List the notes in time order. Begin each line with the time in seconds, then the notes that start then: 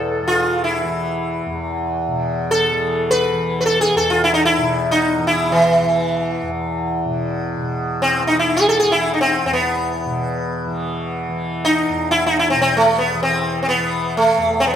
Already playing: E2 B2 E3 A4
0.23 E3
0.28 F4
0.64 E4
0.84 E3
1.46 E2
2.08 B2
2.51 A4
2.71 E3
3.11 B4
3.33 E3
3.61 B4
3.66 A4
3.81 G#4
3.95 E2 A4
4.10 F4
4.24 E4
4.34 D#4
4.45 E4
4.58 B2
4.91 D#4
5.18 E3
5.27 E4
5.52 E3
5.81 E3
6.42 E2
7.05 B2
7.57 B2
8.02 C4
8.21 E3
8.27 D#4
8.39 E4
8.56 G#4
8.69 A4
8.79 E3 G#4
8.92 E4
9.14 D#4
9.21 C4
9.45 E2 C4
9.53 B3
10.06 B2
10.66 E3
11.29 E3
11.65 D#4
11.89 E2
12.11 E4
12.26 D#4
12.39 E4
12.50 B2 C4
12.62 C4
12.77 A3
12.98 B3
13.14 E3
13.23 C4
13.63 C4
13.69 B3
13.78 E3
14.17 A3
14.38 E2
14.60 C4
14.67 B3